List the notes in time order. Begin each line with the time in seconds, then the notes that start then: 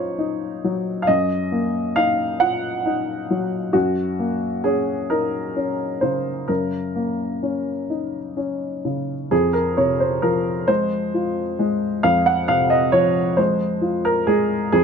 Already playing: F#2 A#3 D#4 F4 A#4 C5 C#5
0.18 D#4
0.64 F#3
1.02 F5
1.07 F#2 D#5
1.52 A#3
1.96 D#4 F5
2.40 F4 F#5
2.86 D#4
3.30 F#3
3.73 F#2 F#4
4.19 A#3
4.64 C#4 G#4
5.10 D#4 A#4
5.56 C#4
6.01 C#3 C5
6.48 F#2 A#4
6.96 A#3
7.43 C#4
7.90 D#4
8.37 C#4
8.85 C#3
9.31 F2 G#4
9.53 A#4
9.77 C3 C#5
10.00 C5
10.22 F3 A#4
10.68 G#3 C5
11.14 F4
11.59 G#3
12.03 F2 F5
12.26 F#5
12.48 C3 F5
12.70 D#5
12.92 F3 C#5
13.37 G#3 C5
13.82 F4
14.05 A#4
14.27 G#3 G#4
14.72 F2 G#4